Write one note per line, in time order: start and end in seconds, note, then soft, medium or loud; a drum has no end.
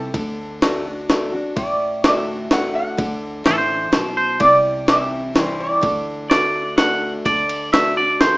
0.00 0.12 C3 medium
0.00 0.59 A4 medium
0.14 1.39 D2 medium
0.14 0.60 D3 medium
0.14 kick medium
0.14 ride medium
0.61 0.84 D3 medium
0.61 0.84 A3 medium
0.61 0.84 D4 medium
0.61 0.84 F#4 medium
0.61 snare medium
0.61 ride medium
0.85 1.09 D4 soft
0.85 1.08 F#4 medium
1.09 1.31 D3 medium
1.09 1.32 A3 medium
1.09 1.32 D4 medium
1.09 1.31 F#4 medium
1.09 snare medium
1.09 ride medium
1.32 1.56 D4 soft
1.32 1.55 F#4 medium
1.56 2.81 A1 medium
1.56 2.46 A2 medium
1.56 2.05 D5 medium
1.56 kick loud
1.56 ride medium
2.03 2.49 D3 soft
2.03 2.49 A3 medium
2.03 2.49 D4 medium
2.03 2.50 F#4 medium
2.03 2.52 E5 medium
2.03 snare medium
2.03 ride medium
2.51 2.96 D3 medium
2.51 2.96 A3 medium
2.51 2.97 D4 medium
2.51 2.98 F#4 medium
2.51 2.74 F#5 medium
2.51 snare medium
2.51 ride medium
2.75 3.66 F#5 medium
2.97 3.40 D2 medium
2.97 3.88 D3 medium
2.97 kick loud
2.97 ride medium
3.44 3.87 A1 medium
3.44 3.90 E3 medium
3.44 3.58 A4 medium
3.44 snare medium
3.44 ride medium
3.58 4.15 C5 medium
3.92 4.34 B1 medium
3.92 4.38 B2 medium
3.92 snare medium
3.92 ride medium
4.17 4.40 C5 medium
4.40 5.66 C2 medium
4.40 5.31 C3 medium
4.40 4.89 D5 medium
4.40 kick loud
4.40 ride medium
4.87 5.32 E3 medium
4.87 5.33 G3 medium
4.87 5.33 C4 medium
4.87 5.34 E4 medium
4.87 5.33 E5 medium
4.87 snare medium
4.87 ride medium
5.33 5.80 E3 medium
5.33 5.80 G3 medium
5.33 5.80 C4 medium
5.33 5.81 E4 medium
5.33 5.61 C5 medium
5.33 snare medium
5.33 ride medium
5.60 6.39 D5 medium
5.81 7.09 D2 medium
5.81 6.29 D3 medium
5.81 kick loud
5.81 ride medium
6.30 6.75 D3 medium
6.30 6.76 A3 medium
6.30 6.76 D4 medium
6.30 6.76 F#4 medium
6.30 6.76 D5 medium
6.30 snare medium
6.30 ride medium
6.39 6.75 C5 medium
6.77 7.23 D3 medium
6.77 7.23 A3 medium
6.77 7.24 D4 medium
6.77 7.24 F#4 medium
6.77 7.13 F#5 medium
6.77 snare medium
6.77 ride medium
7.25 8.38 D2 medium
7.25 7.70 D3 medium
7.25 7.72 D5 loud
7.25 kick loud
7.25 ride medium
7.49 ride medium
7.72 7.95 D3 medium
7.72 7.96 A3 medium
7.72 7.96 D4 medium
7.72 7.95 F#4 medium
7.72 7.97 E5 medium
7.72 snare medium
7.72 ride medium
7.97 8.21 D4 soft
7.97 8.20 F#4 medium
7.97 8.19 D5 medium
8.21 8.38 D3 soft
8.21 8.38 A3 medium
8.21 8.38 D4 medium
8.21 8.38 F#4 medium
8.21 8.38 C5 medium
8.21 snare medium
8.21 ride medium